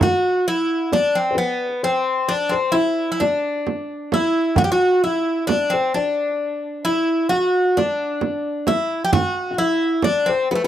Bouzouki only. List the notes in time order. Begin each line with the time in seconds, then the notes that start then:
0.03 F#4
0.48 E4
0.93 D4
1.15 C4
1.38 B3
1.84 C4
2.29 D4
2.49 C4
2.72 E4
3.12 E4
3.20 D4
4.14 E4
4.58 F#4
4.64 G4
4.72 F#4
5.04 E4
5.47 D4
5.70 C4
5.94 D4
6.85 E4
7.29 F#4
7.77 D4
8.68 E4
9.05 G4
9.13 F#4
9.58 E4
10.04 D4
10.26 C4
10.51 B3
10.55 A3